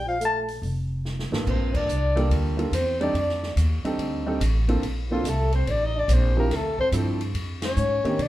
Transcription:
Already playing: A#1
0.06 F3 F5
0.20 A3, closed hi-hat
0.25 A5
0.48 open hi-hat
0.62 F1, open hi-hat
1.05 snare
1.19 snare
1.31 G#1 G2 A#3 D4 F4 A4, snare
1.46 A#1 C4, kick, crash
1.50 C5
1.74 D4 D5, kick, crash
1.87 C2, hi-hat pedal
2.16 G3 A#3 D4 F4 A4, ride
2.30 D2, ride
2.57 G3 A#3 D4 F4 A4, ride
2.72 E2 C4 C5, hi-hat pedal, ride
3.00 G3 C4 D4 D#4 A4 D5, ride
3.14 F2, ride
3.29 snare
3.43 snare
3.56 D#2, hi-hat pedal, ride
3.84 G3 C4 D4 D#4 A4, muted upright bass stroke, ride
3.98 D2, ride
4.27 G3 C4 D4 D#4 A4
4.41 A1, hi-hat pedal, ride
4.68 A#3 C4 D4 F4 A4, ride
4.82 A#1, ride
5.10 F3 A#3 C4 D4 F4 A4
5.24 C2 A3, hi-hat pedal, ride
5.29 A4
5.53 C4 C5, ride
5.67 A1 D4, ride
5.71 D5
5.83 D#4 D#5
5.97 D4 D5
6.08 A#1 C4, hi-hat pedal, ride
6.13 C5
6.36 F3 A#3 C4 D4 E4 G4 A#4
6.50 D2 A3, snare, ride
6.56 A4
6.79 C4 C5, muted upright bass stroke, kick
6.92 G2 F3 C4 D4 E4 A4, hi-hat pedal, ride
7.21 ride
7.34 F2, ride
7.62 C#4 C#5, snare, ride
7.76 G#2, hi-hat pedal
8.04 D#3 A#3 C4 D4 G4, muted upright bass stroke, ride
8.19 C3 D4, ride
8.23 D5

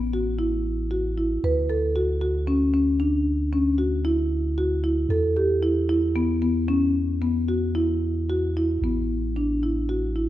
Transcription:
Already playing: A1
0.13 F#4
0.39 E4
0.91 F#4
1.18 E4
1.44 D2 B4
1.70 A4
1.96 F#4
2.21 F#4
2.47 C#4
2.74 C#4
3.00 D4
3.53 C#4
3.78 F#4
4.05 E4
4.58 F#4
4.84 E4
5.09 E2 A4
5.36 G4
5.63 E4
5.89 E4
6.16 B3
6.42 B3
6.68 C#4
7.22 B3
7.48 F#4
7.75 E4
8.30 F#4
8.57 E4
8.82 A1 B3
9.36 D4
9.63 E4
9.89 F#4
10.16 E4

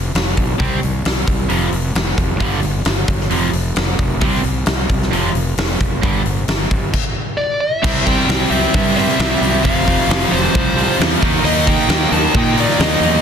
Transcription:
Already playing: F1
0.14 F1, snare, open hi-hat
0.37 B1, kick, open hi-hat
0.58 C2 C3 G3 C4, kick, open hi-hat
0.83 C2, open hi-hat
1.05 C2, snare, open hi-hat
1.28 C2, kick, open hi-hat
1.49 F1 F2 C3 F3, open hi-hat
1.72 F1, open hi-hat
1.95 F1, snare, open hi-hat
2.18 F1, kick, open hi-hat
2.40 G1 G2 D3 G3, kick, open hi-hat
2.63 G1, open hi-hat
2.85 G1, snare, open hi-hat
3.08 G1, kick, open hi-hat
3.20 snare
3.30 F1 F2 C3 F3, open hi-hat
3.53 F1, open hi-hat
3.76 F1, snare, open hi-hat
3.99 F1, kick, open hi-hat
4.21 C2 C3 G3 C4, kick, open hi-hat
4.44 C2, open hi-hat
4.66 C2, snare, open hi-hat
4.89 C2, kick, open hi-hat
5.02 snare
5.11 F1 F2 C3 F3, open hi-hat
5.35 F1, open hi-hat
5.57 F1, snare, open hi-hat
5.80 F1, kick, open hi-hat
6.03 G1 G2 D3 G3, kick, open hi-hat
6.25 G1, open hi-hat
6.48 G1, snare, open hi-hat
6.70 G1, kick, open hi-hat
6.93 kick, crash
7.37 D5
7.60 E5
7.83 C2 C3 G3 C4, kick, crash
8.05 C3 G3 C4 G5, kick, open hi-hat
8.28 C2 C3 G3 C4, snare, open hi-hat
8.50 C2 C3 G3 C4 E5, open hi-hat
8.74 G2 C3 G3 C4 E5, kick, open hi-hat
8.97 C3 G3 C4 E5, snare, open hi-hat
9.09 snare
9.19 C2 C3 G3 C4, snare, open hi-hat
9.41 C2 C3 G3 C4, open hi-hat
9.64 F1 F2 C3 F3 F5, kick, open hi-hat
9.86 F2 C3 F3, kick, open hi-hat
10.09 F1 F2 C3 F3, snare, open hi-hat
10.31 F1 F2 C3 F3 C5, open hi-hat
10.54 C2 F2 C3 F3, kick, open hi-hat
10.76 F2 C3 F3, open hi-hat
10.99 E2 F2 C3 F3, snare, open hi-hat
11.21 D#2 D#3 A#3 D#4, kick, open hi-hat
11.44 D#2 D#3 A#3 D#4 D#5, open hi-hat
11.66 D#3 A#3 D#4 G5, kick, open hi-hat
11.88 D#2 D#3 A#3 D#4, snare, open hi-hat
12.11 D#2 D#3 A#3 D#4 A5, open hi-hat
12.34 A#2 D#3 A#3 D#4 G5, kick
12.57 D#3 A#3 D#4 D5, open hi-hat
12.69 snare
12.79 D#2 D#3 A#3 D#4 D#5, snare, open hi-hat
13.00 E2 D#3 A#3 D#4, open hi-hat

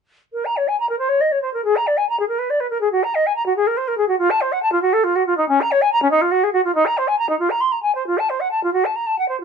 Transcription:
0.32 A#4
0.45 A#5
0.56 C#5
0.67 G#5
0.79 A#5
0.89 A#4
0.98 C5
1.08 C#5
1.20 D#5
1.31 C#5
1.41 C5
1.53 A#4
1.64 G#4
1.76 A#5
1.87 D5
1.97 G#5
2.09 A#5
2.19 G#4
2.28 A#4
2.38 B4
2.50 D5
2.60 B4
2.70 A#4
2.80 G#4
2.91 F#4
3.03 A#5
3.14 D#5
3.26 G#5
3.35 A#5
3.46 F#4
3.56 G#4
3.66 A#4
3.77 C5
3.87 A#4
3.97 G#4
4.08 F#4
4.18 F4
4.30 A5
4.41 C5
4.52 F#5
4.62 A5
4.72 F4
4.81 F#4
4.93 A4
5.03 F4
5.15 F#4
5.26 F4
5.37 D#4
5.48 C#4
5.61 A#5
5.71 C#5
5.81 G#5
5.92 A#5
6.02 C#4
6.11 D#4
6.21 F4
6.31 F#4
6.43 G#4
6.52 F#4
6.64 F4
6.74 D#4
6.85 A#5
6.97 C5
7.07 G#5
7.18 A#5
7.29 D#4
7.39 F4
7.50 A#5
7.60 C6
7.71 A#5
7.82 G#5
7.94 C5
8.06 F4
8.18 A5
8.29 C5
8.40 F#5
8.51 A5
8.63 F4
8.73 F#4
8.85 A5
8.95 A#5
9.06 A5
9.18 F#5
9.28 C5
9.40 F4

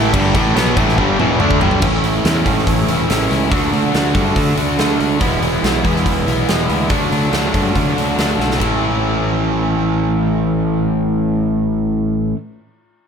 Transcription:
Already playing: A1 A2 E3 A3 E4 E5
0.13 G1 G2 D3 G3 D4 D5, kick, crash
0.34 A1 A2 E3 A3, kick, crash
0.55 B1 B2 F#3 B3, snare, crash
0.76 A1 A2 E3 A3, kick, crash
0.89 snare
0.97 G1 G2 D3 G3, kick
1.19 E1 E2 B2 E3, mid tom
1.40 D2 D3 A3 D4, mid tom
1.51 kick
1.61 G1 G2 D3 G3, floor tom
1.71 floor tom
1.82 A1 A2 E3 A3 C#4, kick, crash
1.86 E4
2.04 A3 C#4 E4, open hi-hat
2.24 E2 A2 E3 A3 C#4 E4, snare, open hi-hat
2.44 A2 E3 A3 C#4 E4, kick, open hi-hat
2.58 snare
2.67 A1, kick, open hi-hat
2.87 E1 A3 C#4 E4, open hi-hat
3.08 A1 E3 A3 C#4 E4, snare, open hi-hat
3.29 C#2 A3 C#4 E4, snare, open hi-hat
3.50 D2 D3 A3 D4 F#4, kick, open hi-hat
3.72 D2 A3 D4 F#4, open hi-hat
3.93 D2 D3 A3 D4 F#4, snare, open hi-hat
4.14 G2 D3 A3 D4 F#4, kick, open hi-hat
4.36 D3, kick, open hi-hat
4.55 D2 A3 D4 F#4, open hi-hat
4.77 D2 D3 A3 D4 F#4, snare, open hi-hat
4.98 D2 A3 D4 F#4, open hi-hat
5.20 E1 E3 G#3 B3 E4, kick, open hi-hat
5.41 G#3 B3 E4, open hi-hat
5.62 B1 E3 G#3 B3 E4, snare, open hi-hat
5.84 E2 E3 G#3 B3 E4, kick, open hi-hat
5.96 snare
6.06 E1, kick, open hi-hat
6.27 B1 G#3 B3 E4, open hi-hat
6.47 E1 E3 G#3 B3 E4, snare, open hi-hat
6.68 D2 G#3 B3 E4, open hi-hat
6.88 D2 D3 F#3 A3 D4 F#4, kick, open hi-hat
7.11 D2 F#3 A3 D4, open hi-hat
7.31 D2 D3 F#3 A3 D4, snare, open hi-hat
7.53 G2 D3 A3 D4 F#4, kick, open hi-hat
7.76 D3, kick, open hi-hat
7.96 D2 F#3 A3 D4, open hi-hat
8.17 D2 D3 F#3 A3 D4, snare, open hi-hat
8.38 B1 F#3 A3 D4, snare
8.51 snare
8.58 A1 A2 E3 C#4 E4, kick, ride
8.62 A3

